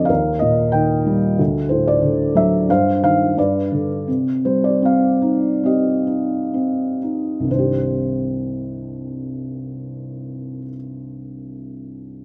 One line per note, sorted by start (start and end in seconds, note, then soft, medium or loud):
0.00 0.11 F2 soft
0.00 0.12 C3 soft
0.00 0.11 D3 soft
0.00 0.11 F3 soft
0.00 0.12 C5 medium
0.00 0.11 D5 medium
0.00 0.11 D#5 medium
0.05 1.35 D#2 soft
0.05 0.37 F5 medium
0.09 1.35 A#4 soft
0.39 1.36 A#2 soft
0.39 0.74 D#5 medium
0.72 1.37 D#3 soft
0.72 1.18 G5 medium
1.06 1.38 G3 soft
1.39 2.65 D2 soft
1.69 2.66 A2 soft
1.69 1.85 C5 medium
1.87 2.38 D5 medium
2.02 2.66 D3 soft
2.35 2.68 F#3 soft
2.35 2.70 E5 medium
2.69 3.35 G2 medium
2.69 3.33 C5 medium
2.69 3.02 F5 medium
3.03 3.36 D#3 soft
3.03 3.38 F5 medium
3.37 4.05 G2 medium
3.37 4.05 B4 soft
3.37 3.87 D5 medium
3.72 4.06 D3 soft
4.08 7.45 C3 soft
4.45 6.03 G3 soft
4.45 4.64 C5 medium
4.64 4.83 D5 medium
4.82 5.62 C4 soft
4.82 5.67 F5 medium
5.22 6.06 D#4 soft
5.64 6.52 C4 soft
5.64 7.46 G4 soft
5.64 6.98 D#5 soft
6.07 7.01 D#4 soft
6.54 7.46 C4 soft
7.02 7.48 D#4 soft
7.40 10.57 C2 soft
7.40 10.61 G2 soft
7.47 10.65 D#3 soft
7.47 10.68 C5 soft
7.51 10.69 C4 soft
7.51 10.72 D4 soft
7.59 10.76 G4 soft